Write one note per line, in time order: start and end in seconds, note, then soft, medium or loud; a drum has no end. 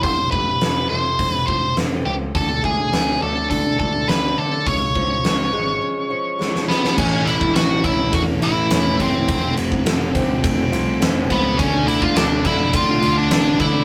0.00 0.28 F1 medium
0.00 1.48 F2 medium
0.00 0.90 A3 medium
0.00 0.31 C5 medium
0.00 kick loud
0.00 open hi-hat soft
0.31 0.57 F1 medium
0.31 1.77 C3 medium
0.31 0.89 B4 medium
0.31 kick medium
0.61 0.86 F1 medium
0.61 1.48 F3 medium
0.61 snare loud
0.61 open hi-hat soft
0.89 1.15 F1 medium
0.89 1.76 A3 medium
0.89 1.32 C5 loud
1.19 1.44 F1 medium
1.19 2.35 C4 medium
1.19 kick medium
1.19 open hi-hat soft
1.32 1.46 B4 loud
1.47 1.73 F1 medium
1.47 2.06 F3 medium
1.47 1.74 C5 medium
1.47 kick medium
1.77 2.02 F1 medium
1.77 2.35 A3 medium
1.77 snare medium
1.77 open hi-hat soft
2.06 2.31 C#2 medium
2.06 2.34 F3 medium
2.06 2.13 G4 medium
2.35 2.60 D2 medium
2.35 2.91 D3 medium
2.35 2.62 A4 medium
2.35 kick medium
2.35 open hi-hat soft
2.63 2.89 D2 medium
2.63 3.20 A3 medium
2.63 3.22 G#4 medium
2.63 kick medium
2.92 3.17 D2 medium
2.92 3.77 D3 medium
2.92 snare medium
2.92 open hi-hat soft
3.21 3.47 D2 medium
3.21 4.07 A3 medium
3.21 3.49 A4 medium
3.50 3.76 D2 medium
3.50 4.66 D4 medium
3.50 3.78 A4 medium
3.50 kick medium
3.50 open hi-hat soft
3.78 4.04 D2 medium
3.78 4.36 D3 medium
3.78 4.10 A4 medium
3.78 kick medium
4.08 4.33 D2 medium
4.08 4.66 A3 medium
4.08 4.38 B4 medium
4.08 snare medium
4.08 open hi-hat soft
4.37 4.66 D3 medium
4.37 4.62 D3 medium
4.37 4.68 A4 medium
4.66 4.91 C#2 medium
4.66 6.11 C#3 medium
4.66 6.65 C#5 medium
4.66 kick medium
4.66 open hi-hat soft
4.95 5.20 C#2 medium
4.95 5.23 F3 medium
4.95 kick medium
5.24 5.49 C#2 medium
5.24 6.09 F3 medium
5.24 snare medium
5.24 open hi-hat soft
5.53 5.78 G#1 medium
5.53 6.38 G#3 medium
5.82 6.98 C#4 medium
6.10 6.66 F3 medium
6.39 6.97 G#3 medium
6.39 snare soft
6.56 snare medium
6.68 6.97 F3 medium
6.68 6.96 B3 medium
6.68 6.96 B4 medium
6.68 snare medium
6.85 snare medium
6.96 7.26 A1 loud
6.96 8.41 A2 medium
6.96 8.97 A2 medium
6.96 8.99 E3 medium
6.96 7.25 C#4 medium
6.96 7.28 C#5 medium
6.96 kick loud
6.96 crash loud
7.00 8.98 A3 medium
7.25 7.54 A1 medium
7.25 8.70 E3 medium
7.25 7.53 E4 medium
7.25 7.55 E5 medium
7.25 ride medium
7.41 kick medium
7.55 7.83 A1 medium
7.55 8.12 A3 medium
7.55 7.83 F#4 medium
7.55 7.83 F#5 loud
7.55 snare loud
7.55 ride medium
7.84 8.12 C#2 medium
7.84 8.70 C#4 medium
7.84 8.12 E4 medium
7.84 8.11 E5 medium
7.84 kick medium
7.84 ride medium
8.13 8.41 E2 medium
8.13 9.85 A3 medium
8.13 8.22 F#4 medium
8.13 8.22 F#5 medium
8.13 kick loud
8.13 ride medium
8.41 8.69 A1 medium
8.41 9.28 E4 medium
8.41 8.96 E4 medium
8.41 9.02 E5 medium
8.41 ride medium
8.70 8.98 E1 medium
8.70 9.29 C#4 medium
8.70 snare loud
8.70 ride medium
8.99 9.27 F#1 medium
8.99 9.28 A2 medium
8.99 9.28 E3 medium
8.99 9.27 E3 medium
8.99 11.60 A3 medium
8.99 9.54 C4 medium
8.99 9.54 C5 medium
8.99 kick medium
8.99 ride medium
9.27 9.56 F1 loud
9.27 11.28 F2 medium
9.27 10.72 F2 medium
9.27 11.29 C3 medium
9.27 11.29 F3 medium
9.27 kick loud
9.27 ride medium
9.57 9.85 F1 medium
9.57 11.30 F3 medium
9.57 ride medium
9.72 kick medium
9.85 10.13 F1 medium
9.85 10.42 A3 medium
9.85 snare loud
9.85 ride medium
10.15 10.42 D2 medium
10.15 11.00 C4 medium
10.15 kick medium
10.15 ride medium
10.43 10.71 F1 medium
10.43 11.59 A3 medium
10.43 kick loud
10.43 ride medium
10.72 11.00 C2 medium
10.72 13.02 F4 medium
10.72 ride medium
11.01 11.29 F1 medium
11.01 11.59 C4 medium
11.01 snare loud
11.01 ride medium
11.30 11.59 C#2 medium
11.30 11.59 F2 medium
11.30 11.58 C3 medium
11.30 11.60 F3 medium
11.30 11.58 F3 medium
11.30 11.57 B3 medium
11.30 11.59 B4 medium
11.30 kick medium
11.30 ride medium
11.58 11.86 D2 medium
11.58 11.86 D3 medium
11.58 13.58 D3 medium
11.58 13.59 A3 medium
11.58 11.85 C#4 medium
11.58 13.58 D4 loud
11.58 11.86 C#5 loud
11.58 kick loud
11.58 ride medium
11.87 12.15 D2 medium
11.87 13.31 D3 medium
11.87 12.01 E4 medium
11.87 12.03 E5 loud
11.87 ride medium
12.02 12.16 F4 medium
12.02 12.17 F5 loud
12.02 kick medium
12.15 12.43 D2 medium
12.15 12.73 A3 medium
12.15 12.43 D4 medium
12.15 12.44 D5 medium
12.15 snare loud
12.15 ride medium
12.44 12.72 F2 loud
12.44 13.29 D4 medium
12.44 12.72 E4 medium
12.44 12.75 E5 loud
12.44 kick medium
12.44 ride medium
12.73 13.01 A2 medium
12.73 13.84 D3 medium
12.73 13.84 A3 medium
12.73 13.84 D4 medium
12.73 13.15 F4 medium
12.73 13.18 F5 medium
12.73 kick loud
12.73 ride medium
13.02 13.30 D2 medium
13.02 13.84 F4 medium
13.02 ride medium
13.18 13.58 D4 medium
13.18 13.60 D5 medium
13.30 13.58 A1 loud
13.30 13.84 D4 medium
13.30 snare loud
13.30 ride medium
13.59 13.84 D3 medium
13.59 13.84 A3 medium
13.59 13.84 D4 medium
13.59 13.84 E4 medium
13.59 13.84 E5 medium
13.59 kick medium
13.59 ride medium